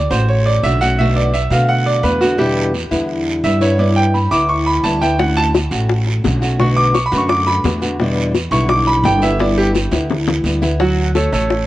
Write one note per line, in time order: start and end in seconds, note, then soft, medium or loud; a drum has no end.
0.00 0.11 D5 medium
0.11 0.60 A1 medium
0.11 0.64 A3 medium
0.11 0.63 C#4 medium
0.11 0.63 F#4 medium
0.11 0.28 C5 medium
0.11 short guiro medium
0.29 0.46 C#5 medium
0.29 long guiro medium
0.46 0.63 D5 medium
0.63 1.45 B1 loud
0.63 0.81 D3 medium
0.63 0.81 A3 medium
0.63 0.81 C#4 medium
0.63 0.81 F#4 medium
0.63 0.80 E5 medium
0.63 short guiro medium
0.81 0.99 A3 medium
0.81 0.99 C#4 medium
0.81 0.98 F#4 medium
0.81 0.98 F#5 loud
0.81 short guiro medium
0.98 1.33 B2 medium
0.98 1.33 D3 medium
0.98 1.34 A3 medium
0.98 1.34 B3 medium
0.98 1.34 F#4 medium
0.98 1.16 E5 medium
0.98 long guiro medium
1.16 1.33 D5 medium
1.34 1.51 E5 medium
1.34 muted nylon-string guitar stroke medium
1.34 short guiro medium
1.50 2.00 B2 medium
1.50 2.02 D3 medium
1.50 2.03 A3 medium
1.50 2.04 B3 medium
1.50 2.03 F#4 medium
1.50 1.68 F5 medium
1.50 short guiro medium
1.69 1.86 F#5 medium
1.69 long guiro medium
1.86 2.03 D5 medium
2.03 2.85 E2 loud
2.03 2.21 D3 medium
2.03 2.21 A3 soft
2.03 2.21 B3 medium
2.03 2.20 F#4 medium
2.03 2.21 B4 medium
2.03 short guiro medium
2.21 2.37 D3 medium
2.21 2.39 A3 medium
2.21 2.38 B3 medium
2.21 2.38 F#4 medium
2.21 short guiro medium
2.38 2.73 B2 medium
2.38 2.73 D3 medium
2.38 2.73 G3 medium
2.38 2.73 B3 medium
2.38 2.73 E4 medium
2.38 2.71 G4 medium
2.38 long guiro medium
2.74 muted nylon-string guitar stroke medium
2.74 short guiro medium
2.91 3.40 E2 medium
2.91 3.42 D3 medium
2.91 3.43 G3 medium
2.91 3.43 B3 medium
2.91 3.43 E4 medium
2.91 short guiro medium
3.09 long guiro medium
3.43 4.26 G2 loud
3.43 3.60 D3 medium
3.43 3.61 G3 medium
3.43 3.60 B3 medium
3.43 3.60 E4 medium
3.43 3.61 E5 medium
3.43 short guiro medium
3.61 3.79 D3 medium
3.61 3.77 G3 medium
3.61 3.78 B3 medium
3.61 3.78 E4 medium
3.61 3.78 C#5 medium
3.61 short guiro medium
3.78 4.13 G3 medium
3.78 4.13 B3 medium
3.78 4.14 E4 medium
3.78 3.96 D5 medium
3.78 long guiro medium
3.96 4.13 G5 medium
4.14 4.31 B5 medium
4.14 muted nylon-string guitar stroke medium
4.14 short guiro medium
4.31 4.80 D2 medium
4.31 4.84 B3 medium
4.31 4.84 E4 medium
4.31 4.48 D6 loud
4.31 short guiro medium
4.49 4.66 C#6 medium
4.49 long guiro medium
4.66 4.83 B5 medium
4.83 5.66 D2 medium
4.83 5.01 G3 medium
4.83 5.01 B3 medium
4.83 5.00 E4 medium
4.83 5.01 A5 medium
4.83 short guiro medium
5.01 5.19 B3 medium
5.01 5.18 E4 medium
5.01 5.18 G5 medium
5.01 short guiro medium
5.18 5.53 D3 medium
5.18 5.53 A3 medium
5.18 5.54 C#4 medium
5.18 5.54 F#4 medium
5.18 5.36 F#5 medium
5.18 high bongo medium
5.18 long guiro medium
5.37 5.47 A5 loud
5.37 high bongo soft
5.54 muted nylon-string guitar stroke medium
5.54 high bongo medium
5.54 short guiro medium
5.71 6.20 A1 loud
5.71 6.24 A3 medium
5.71 6.24 C#4 medium
5.71 6.24 F#4 medium
5.71 short guiro medium
5.89 high bongo medium
5.89 long guiro medium
6.07 high bongo soft
6.24 7.06 B1 medium
6.24 6.41 D3 medium
6.24 6.41 A3 medium
6.24 6.42 C#4 medium
6.24 6.40 F#4 medium
6.24 high bongo soft
6.24 low bongo medium
6.24 short guiro medium
6.41 6.59 A3 medium
6.41 6.59 C#4 medium
6.41 6.59 F#4 medium
6.41 high bongo soft
6.41 short guiro medium
6.59 6.94 B2 medium
6.59 6.94 D3 medium
6.59 6.94 A3 medium
6.59 6.94 B3 medium
6.59 6.94 F#4 medium
6.59 6.76 C#6 medium
6.59 high bongo medium
6.59 long guiro medium
6.76 6.94 D6 loud
6.76 high bongo soft
6.94 7.06 C#6 medium
6.94 muted nylon-string guitar stroke medium
6.94 high bongo medium
6.94 short guiro medium
7.06 7.17 B5 medium
7.12 7.61 F#2 loud
7.12 7.64 D3 medium
7.12 7.64 A3 medium
7.12 7.65 B3 medium
7.12 7.64 F#4 medium
7.12 short guiro medium
7.18 7.29 C#6 medium
7.29 7.46 D6 loud
7.29 high bongo medium
7.29 long guiro medium
7.47 7.58 B5 loud
7.47 high bongo soft
7.64 8.46 E2 loud
7.64 7.82 D3 medium
7.64 7.82 A3 medium
7.64 7.81 B3 medium
7.64 7.81 F#4 medium
7.64 high bongo soft
7.64 low bongo medium
7.64 short guiro medium
7.82 7.99 D3 medium
7.82 7.99 A3 medium
7.82 7.99 B3 medium
7.82 7.99 F#4 medium
7.82 high bongo soft
7.82 short guiro medium
7.99 8.33 B2 medium
7.99 8.34 D3 medium
7.99 8.34 G3 medium
7.99 8.34 B3 medium
7.99 8.34 E4 medium
7.99 high bongo medium
7.99 long guiro medium
8.17 high bongo soft
8.35 muted nylon-string guitar stroke medium
8.35 high bongo medium
8.35 short guiro medium
8.51 9.01 B1 loud
8.51 9.03 D3 medium
8.51 9.04 G3 medium
8.51 9.04 B3 medium
8.51 9.04 E4 medium
8.51 8.69 C#6 loud
8.51 short guiro medium
8.69 8.87 D6 loud
8.69 high bongo medium
8.69 long guiro medium
8.87 9.04 B5 loud
8.87 high bongo soft
9.03 9.86 G1 loud
9.03 9.21 D3 medium
9.03 9.22 G3 medium
9.03 9.22 B3 medium
9.03 9.21 E4 medium
9.03 9.22 G5 medium
9.03 high bongo soft
9.03 low bongo medium
9.03 short guiro medium
9.22 9.40 D3 medium
9.22 9.38 G3 medium
9.22 9.39 B3 medium
9.22 9.39 E4 medium
9.22 9.39 E5 medium
9.22 high bongo soft
9.22 short guiro medium
9.39 9.73 G3 medium
9.39 9.73 B3 medium
9.39 9.74 E4 medium
9.39 9.57 D5 medium
9.39 high bongo medium
9.39 long guiro medium
9.58 9.68 G4 medium
9.58 high bongo soft
9.74 muted nylon-string guitar stroke medium
9.74 high bongo medium
9.74 short guiro medium
9.91 10.41 D2 medium
9.91 10.44 B3 medium
9.91 10.44 E4 medium
9.91 high bongo medium
9.91 short guiro medium
10.10 low bongo medium
10.10 long guiro medium
10.28 low bongo loud
10.44 11.26 D2 medium
10.44 10.62 G3 soft
10.44 10.62 B3 medium
10.44 10.61 E4 medium
10.44 short guiro medium
10.62 10.80 B3 medium
10.62 10.79 E4 medium
10.62 low bongo medium
10.62 short guiro medium
10.80 11.09 F#3 medium
10.80 11.09 F#4 medium
10.80 11.09 F#5 medium
10.80 high bongo medium
10.80 long guiro medium
10.98 high bongo soft
11.15 11.29 A3 medium
11.15 11.30 A4 medium
11.15 11.30 C#5 medium
11.15 high bongo medium
11.15 short guiro medium
11.32 11.67 A1 medium
11.32 11.61 A3 medium
11.32 11.62 A4 medium
11.32 11.62 C#5 medium
11.32 short guiro medium
11.50 high bongo medium
11.50 long guiro medium